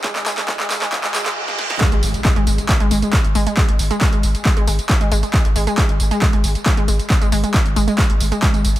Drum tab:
HH |xxoxxxoxxxox----|xxoxxxoxxxoxxxox|xxoxxxoxxxoxxxox|xxoxxxoxxxoxxxox|
TB |xxxxxxxxxxxx----|x-xxx-xxx-xxx-xx|x-xxx-xxx-xxx-xx|x-xxx-xxx-xxx-xx|
CP |xxxxxxxxxxxx----|x---x---x---x---|x---x---x---x---|x---x---x---x---|
SD |-------------ooo|----------------|----------------|----------------|
BD |o---o---o-------|o---o---o---o---|o---o---o---o---|o---o---o---o---|

HH |xxoxxxoxxxoxxxox|
TB |xxxxx-xxx-xxxxxx|
CP |x---x---x---x---|
SD |----------------|
BD |o---o---o---o---|